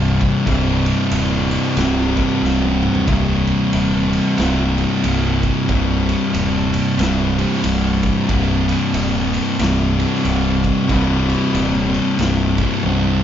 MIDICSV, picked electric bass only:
0, 0, Header, 1, 2, 480
1, 0, Start_track
1, 0, Key_signature, -3, "minor"
1, 0, Tempo, 651466
1, 346, Time_signature, 4, 2, 24, 8
1, 9751, End_track
2, 0, Start_track
2, 0, Title_t, "Picked electric bass"
2, 0, Program_c, 0, 34
2, 0, Note_on_c, 0, 24, 87
2, 186, Note_off_c, 0, 24, 0
2, 343, Note_on_c, 0, 24, 92
2, 669, Note_off_c, 0, 24, 0
2, 820, Note_on_c, 0, 27, 86
2, 1147, Note_off_c, 0, 27, 0
2, 1302, Note_on_c, 0, 24, 100
2, 1629, Note_off_c, 0, 24, 0
2, 1783, Note_on_c, 0, 24, 87
2, 2110, Note_off_c, 0, 24, 0
2, 2266, Note_on_c, 0, 24, 89
2, 2592, Note_off_c, 0, 24, 0
2, 2753, Note_on_c, 0, 27, 97
2, 3077, Note_off_c, 0, 27, 0
2, 3233, Note_on_c, 0, 24, 97
2, 3556, Note_off_c, 0, 24, 0
2, 3714, Note_on_c, 0, 24, 81
2, 4037, Note_off_c, 0, 24, 0
2, 4192, Note_on_c, 0, 24, 96
2, 4516, Note_off_c, 0, 24, 0
2, 4671, Note_on_c, 0, 27, 88
2, 4995, Note_off_c, 0, 27, 0
2, 5149, Note_on_c, 0, 24, 100
2, 5473, Note_off_c, 0, 24, 0
2, 5627, Note_on_c, 0, 24, 94
2, 5952, Note_off_c, 0, 24, 0
2, 6109, Note_on_c, 0, 24, 89
2, 6433, Note_off_c, 0, 24, 0
2, 6584, Note_on_c, 0, 27, 102
2, 6909, Note_off_c, 0, 27, 0
2, 7067, Note_on_c, 0, 24, 96
2, 7391, Note_off_c, 0, 24, 0
2, 7550, Note_on_c, 0, 24, 93
2, 7872, Note_off_c, 0, 24, 0
2, 8026, Note_on_c, 0, 24, 97
2, 8349, Note_off_c, 0, 24, 0
2, 8504, Note_on_c, 0, 27, 103
2, 8827, Note_off_c, 0, 27, 0
2, 8983, Note_on_c, 0, 24, 86
2, 9305, Note_off_c, 0, 24, 0
2, 9461, Note_on_c, 0, 24, 75
2, 9751, Note_off_c, 0, 24, 0
2, 9751, End_track
0, 0, End_of_file